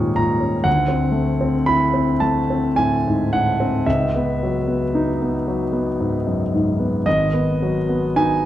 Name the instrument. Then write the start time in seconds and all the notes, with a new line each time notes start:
grand piano
Already playing: D#2 G#2 A#2 G3 C#4 F4 C#6 D#6
0.16 A#2 A#5
0.40 C#4
0.64 D2 F#5
0.88 C4
1.12 A3
1.41 C4
1.66 E4 B5
1.94 C4
2.20 A3 A5
2.50 C4
2.76 A2 G#5
3.07 G#2
3.33 A2 F#5
3.60 C4
3.86 C#2 E5
4.16 B3
4.43 F#3
4.67 B3
4.95 D#4
5.22 B3
5.47 F#3
5.73 B3
6.00 G#2
6.26 F#2
6.54 G#2
6.79 B3
7.06 G#1 D#5
7.34 B3
7.62 F#3
7.89 B3
8.16 D#4 G#5